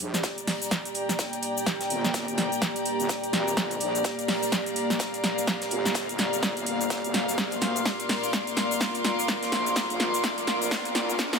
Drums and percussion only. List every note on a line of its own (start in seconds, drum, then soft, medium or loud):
0.00 closed hi-hat medium
0.00 open hi-hat loud
0.14 snare soft
0.14 closed hi-hat soft
0.14 shaker medium
0.23 kick loud
0.23 snare loud
0.23 closed hi-hat medium
0.23 shaker soft
0.38 closed hi-hat medium
0.38 shaker soft
0.47 snare soft
0.47 snare medium
0.47 open hi-hat medium
0.62 closed hi-hat soft
0.62 shaker medium
0.71 kick loud
0.71 snare soft
0.71 closed hi-hat medium
0.71 shaker medium
0.85 closed hi-hat medium
0.85 shaker soft
0.95 closed hi-hat medium
0.95 open hi-hat loud
1.09 snare soft
1.09 closed hi-hat soft
1.09 shaker medium
1.19 kick loud
1.19 snare loud
1.19 closed hi-hat medium
1.19 shaker medium
1.33 closed hi-hat medium
1.33 closed hi-hat soft
1.33 shaker soft
1.43 closed hi-hat medium
1.43 open hi-hat medium
1.57 shaker medium
1.66 kick loud
1.66 snare soft
1.66 closed hi-hat medium
1.66 shaker soft
1.81 snare soft
1.81 closed hi-hat medium
1.81 shaker soft
1.90 closed hi-hat medium
1.90 open hi-hat loud
2.04 snare soft
2.04 closed hi-hat soft
2.04 shaker medium
2.14 kick loud
2.14 snare loud
2.14 closed hi-hat medium
2.14 shaker soft
2.28 closed hi-hat medium
2.28 shaker soft
2.38 snare medium
2.38 closed hi-hat medium
2.38 open hi-hat medium
2.52 closed hi-hat soft
2.52 shaker medium
2.62 kick loud
2.62 snare medium
2.62 closed hi-hat medium
2.62 shaker medium
2.76 closed hi-hat soft
2.76 shaker soft
2.86 closed hi-hat medium
2.86 open hi-hat loud
3.00 closed hi-hat soft
3.00 shaker medium
3.09 kick loud
3.09 snare loud
3.09 closed hi-hat medium
3.09 shaker medium
3.24 closed hi-hat medium
3.24 shaker soft
3.33 snare medium
3.33 closed hi-hat medium
3.33 open hi-hat medium
3.47 closed hi-hat soft
3.47 shaker medium
3.57 kick loud
3.57 snare medium
3.57 closed hi-hat medium
3.57 shaker medium
3.71 closed hi-hat soft
3.71 closed hi-hat medium
3.71 shaker soft
3.80 closed hi-hat medium
3.80 open hi-hat loud
3.95 closed hi-hat soft
3.95 shaker medium
4.04 kick loud
4.04 snare loud
4.04 closed hi-hat medium
4.04 shaker soft
4.19 closed hi-hat medium
4.19 shaker soft
4.28 snare medium
4.28 open hi-hat loud
4.28 open hi-hat medium
4.43 closed hi-hat soft
4.43 shaker medium
4.52 kick loud
4.52 snare medium
4.52 closed hi-hat medium
4.52 shaker medium
4.66 closed hi-hat soft
4.66 shaker soft
4.76 closed hi-hat medium
4.76 open hi-hat loud
4.90 snare medium
4.90 closed hi-hat soft
4.90 shaker medium
4.99 kick loud
4.99 snare loud
4.99 closed hi-hat medium
4.99 shaker medium
5.14 closed hi-hat medium
5.14 closed hi-hat soft
5.14 shaker soft
5.24 snare medium
5.24 closed hi-hat medium
5.24 open hi-hat medium
5.38 shaker medium
5.47 kick loud
5.47 snare medium
5.47 closed hi-hat medium
5.47 shaker medium
5.61 snare soft
5.61 closed hi-hat soft
5.61 shaker soft
5.71 closed hi-hat medium
5.71 open hi-hat loud
5.85 snare medium
5.85 closed hi-hat soft
5.85 shaker medium
5.95 kick loud
5.95 snare loud
5.95 closed hi-hat medium
5.95 shaker soft
6.09 closed hi-hat medium
6.09 shaker soft
6.18 snare medium
6.18 closed hi-hat medium
6.18 open hi-hat loud
6.33 closed hi-hat soft
6.33 shaker medium
6.43 kick loud
6.43 snare medium
6.43 closed hi-hat medium
6.43 shaker medium
6.57 closed hi-hat soft
6.57 shaker soft
6.66 closed hi-hat medium
6.66 open hi-hat loud
6.81 closed hi-hat soft
6.81 shaker medium
6.90 kick loud
6.90 snare loud
6.90 closed hi-hat medium
6.90 shaker medium
7.04 closed hi-hat soft
7.04 shaker soft
7.14 snare medium
7.14 closed hi-hat medium
7.14 open hi-hat loud
7.28 closed hi-hat soft
7.28 shaker medium
7.38 kick loud
7.38 snare medium
7.38 closed hi-hat medium
7.38 shaker medium
7.51 closed hi-hat soft
7.51 shaker soft
7.61 snare medium
7.61 closed hi-hat medium
7.61 open hi-hat loud
7.76 closed hi-hat soft
7.76 shaker medium
7.85 kick loud
7.85 snare medium
7.85 snare loud
7.85 closed hi-hat medium
7.85 shaker medium
8.00 closed hi-hat medium
8.00 shaker soft
8.09 snare medium
8.09 open hi-hat medium
8.23 closed hi-hat soft
8.23 shaker medium
8.33 kick loud
8.33 snare medium
8.33 closed hi-hat medium
8.33 shaker medium
8.47 closed hi-hat soft
8.47 shaker soft
8.56 snare medium
8.56 closed hi-hat medium
8.56 open hi-hat loud
8.71 closed hi-hat soft
8.71 shaker medium
8.81 kick loud
8.81 snare loud
8.81 snare medium
8.81 closed hi-hat medium
8.81 shaker medium
8.94 closed hi-hat soft
8.94 shaker soft
9.04 snare medium
9.04 closed hi-hat medium
9.04 open hi-hat medium
9.19 shaker medium
9.28 kick loud
9.28 snare medium
9.28 closed hi-hat medium
9.28 shaker medium
9.43 snare soft
9.43 closed hi-hat medium
9.43 shaker soft
9.52 snare medium
9.52 closed hi-hat medium
9.52 open hi-hat loud
9.66 closed hi-hat soft
9.66 shaker medium
9.76 kick loud
9.76 snare loud
9.76 snare medium
9.76 closed hi-hat medium
9.76 shaker medium
9.90 closed hi-hat medium
9.90 shaker soft
10.00 snare medium
10.00 closed hi-hat medium
10.00 open hi-hat medium
10.14 closed hi-hat soft
10.14 shaker medium
10.24 kick loud
10.24 snare medium
10.24 closed hi-hat medium
10.24 shaker medium
10.38 closed hi-hat medium
10.38 closed hi-hat soft
10.38 shaker soft
10.47 snare medium
10.47 closed hi-hat medium
10.47 open hi-hat loud
10.62 closed hi-hat soft
10.62 shaker medium
10.71 kick loud
10.71 snare medium
10.71 snare loud
10.71 closed hi-hat medium
10.71 shaker medium
10.85 closed hi-hat medium
10.85 shaker soft
10.95 snare medium
10.95 closed hi-hat medium
10.95 open hi-hat medium
11.09 closed hi-hat soft
11.09 shaker medium
11.19 kick loud
11.19 snare medium
11.19 closed hi-hat medium
11.19 shaker medium
11.33 snare medium
11.33 closed hi-hat medium
11.33 closed hi-hat soft
11.33 shaker soft